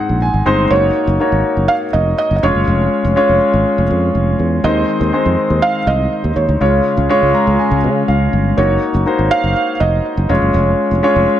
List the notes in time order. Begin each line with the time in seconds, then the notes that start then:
Already playing: G#2 G#3 C4 D#4 G#4 C5 F#5
0.09 A#1
0.22 G#5
0.34 G#1
0.46 G1 G#3 C4 D#4 C5 C6
0.70 F#1 A#3 D#4 F#4 C#5
1.07 F#1
1.20 A#3 D#4 F#4 C#5
1.32 G#1
1.57 F#1
1.68 F5
1.93 F1 D#5
2.18 D#5
2.31 F#1
2.36 D#5
2.43 F1 G#3 C#4 F4 C#5
2.55 F#1
2.67 F1
3.04 F1
3.16 G#3 C#4 F4 C#5
3.29 F1
3.54 G#1
3.78 F1
3.90 F2
4.15 F1
4.39 E2
4.64 D#2 D#3 G#3 C4 D#4 C5 D#5
5.01 D#2
5.13 G#3 C4 D#4 C5
5.26 F2
5.50 D#2
5.62 F5
5.87 C2 D#5
6.24 D#2
6.36 D#2 C#5
6.49 D2
6.61 C#2 C#3 G#3 C#4 F4 C#5
6.97 C#2
7.09 G#3 C#4 F4 C#5
7.22 C#2
7.34 A#5
7.47 C#2
7.59 G#5
7.71 C#2
7.84 C#3
8.08 C#2 F5
8.33 G1
8.57 F#1 A#3 D#4 F#4 C#5
8.94 F#1
9.06 A#3 D#4 F#4 C5
9.19 G#1
9.31 F5
9.44 F#1
9.80 F1 D#5
10.17 F#1
10.29 F1 G#3 C#4 F4 C#5
10.42 F#1
10.54 F1
10.91 F1
11.03 G#3 C#4 F4 C#5
11.16 F1